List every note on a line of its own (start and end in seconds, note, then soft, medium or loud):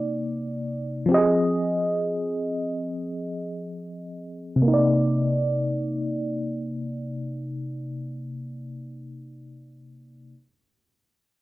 0.00 1.03 C3 medium
0.00 1.05 A#3 medium
0.00 1.06 D#4 medium
0.00 1.08 D5 medium
1.06 4.19 F3 medium
1.06 4.21 C4 medium
1.11 1.17 G4 soft
1.11 4.24 D#5 medium
1.18 4.25 G#4 medium
4.56 9.22 C3 medium
4.62 9.25 A#3 medium
4.68 9.28 D#4 medium
4.74 9.31 D5 medium